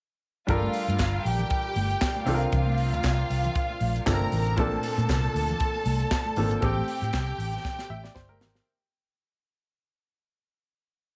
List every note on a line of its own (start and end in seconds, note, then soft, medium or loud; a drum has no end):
0.47 0.66 G1 loud
0.47 2.23 G3 medium
0.47 2.23 D4 medium
0.47 2.24 F4 medium
0.47 1.24 F4 medium
0.47 2.24 A4 medium
0.47 2.24 A#4 medium
0.47 1.24 F5 medium
0.47 kick loud
0.47 closed hi-hat medium
0.47 muted conga soft
0.47 low conga medium
0.62 muted conga soft
0.62 high conga medium
0.73 open hi-hat medium
0.88 0.96 G2 loud
0.88 closed hi-hat soft
0.88 high conga medium
0.98 1.18 G1 medium
0.98 kick loud
0.98 snare medium
0.98 clap medium
0.98 closed hi-hat medium
1.13 muted conga soft
1.25 1.43 A#1 medium
1.25 2.25 G4 medium
1.25 2.25 G5 medium
1.25 open hi-hat medium
1.39 closed hi-hat soft
1.39 low conga medium
1.50 kick loud
1.50 closed hi-hat medium
1.76 1.94 G1 medium
1.76 open hi-hat soft
1.76 high conga medium
1.91 closed hi-hat soft
2.01 kick loud
2.01 snare loud
2.01 clap medium
2.01 closed hi-hat medium
2.16 high conga medium
2.26 2.45 C2 loud
2.26 4.02 C3 medium
2.26 4.02 C4 medium
2.26 4.03 D4 medium
2.26 4.03 F4 medium
2.26 2.35 A4 medium
2.26 4.03 F5 medium
2.26 open hi-hat medium
2.26 low conga medium
2.34 4.06 A#4 medium
2.41 closed hi-hat soft
2.52 2.93 C2 loud
2.52 kick loud
2.52 closed hi-hat medium
2.52 low conga medium
2.67 muted conga soft
2.67 high conga medium
2.78 open hi-hat medium
2.93 3.01 D2 medium
2.93 closed hi-hat soft
2.93 high conga medium
3.03 3.22 C2 medium
3.03 kick medium
3.03 snare medium
3.03 clap medium
3.03 closed hi-hat medium
3.18 muted conga soft
3.30 3.48 C2 medium
3.30 open hi-hat medium
3.44 closed hi-hat soft
3.44 low conga medium
3.55 kick loud
3.55 closed hi-hat medium
3.70 muted conga soft
3.81 3.99 A#1 medium
3.81 open hi-hat medium
3.81 high conga medium
3.96 closed hi-hat soft
4.06 4.24 G1 loud
4.06 4.57 C3 medium
4.06 4.56 C4 soft
4.06 4.57 D4 soft
4.06 4.58 F4 soft
4.06 4.14 A4 soft
4.06 4.57 A#4 medium
4.06 4.57 A#5 medium
4.06 kick loud
4.06 snare loud
4.06 clap medium
4.06 closed hi-hat medium
4.14 4.61 A#4 medium
4.21 muted conga soft
4.21 high conga medium
4.32 4.58 A1 medium
4.32 open hi-hat medium
4.32 low conga medium
4.47 closed hi-hat soft
4.56 4.76 A#1 medium
4.56 6.33 A#2 medium
4.56 6.33 A#3 medium
4.56 6.33 C4 medium
4.56 6.34 D4 medium
4.56 6.58 A4 medium
4.56 6.34 A4 medium
4.56 6.58 A5 medium
4.56 kick loud
4.56 closed hi-hat medium
4.56 low conga medium
4.72 muted conga soft
4.72 high conga medium
4.83 open hi-hat medium
4.98 5.06 A#2 medium
4.98 closed hi-hat soft
4.98 high conga medium
5.09 5.27 C2 medium
5.09 kick loud
5.09 snare medium
5.09 clap medium
5.09 closed hi-hat medium
5.09 muted conga soft
5.24 muted conga soft
5.35 5.52 D2 medium
5.35 open hi-hat medium
5.49 closed hi-hat soft
5.49 low conga medium
5.60 kick loud
5.60 closed hi-hat medium
5.60 muted conga soft
5.75 muted conga soft
5.85 6.04 C2 medium
5.85 open hi-hat medium
5.85 high conga medium
6.00 closed hi-hat soft
6.11 kick loud
6.11 snare loud
6.11 clap medium
6.11 closed hi-hat medium
6.11 muted conga soft
6.26 muted conga soft
6.26 high conga medium
6.36 6.55 G#1 medium
6.36 6.62 A#2 soft
6.36 6.62 A#3 soft
6.36 6.61 C4 soft
6.36 6.63 D4 soft
6.36 6.60 A4 medium
6.36 open hi-hat medium
6.36 low conga medium
6.51 closed hi-hat soft
6.61 6.80 A1 loud
6.61 8.63 C4 medium
6.61 8.63 G4 medium
6.61 8.64 G4 medium
6.61 8.62 A4 medium
6.61 8.63 G5 medium
6.61 kick loud
6.61 closed hi-hat medium
6.61 muted conga soft
6.61 low conga medium
6.76 muted conga soft
6.76 high conga medium
6.88 open hi-hat medium
7.02 7.10 A2 medium
7.02 closed hi-hat soft
7.02 high conga medium
7.13 7.31 C2 medium
7.13 kick loud
7.13 snare medium
7.13 clap medium
7.13 closed hi-hat medium
7.13 muted conga soft
7.28 muted conga soft
7.38 7.56 A1 medium
7.38 open hi-hat medium
7.53 closed hi-hat soft
7.53 low conga medium
7.65 kick loud
7.65 snare medium
7.65 muted conga soft
7.79 snare soft
7.79 muted conga soft
7.90 8.08 A1 medium
7.90 8.03 E5 medium
7.90 high conga medium
8.04 8.14 D5 medium
8.04 snare medium
8.15 8.41 G1 medium
8.15 8.29 C5 medium
8.15 kick loud
8.15 snare medium
8.29 8.64 A#4 medium
8.29 muted conga soft
8.29 high conga medium
8.41 8.59 G#1 medium
8.41 snare loud
8.41 low conga medium
8.55 snare medium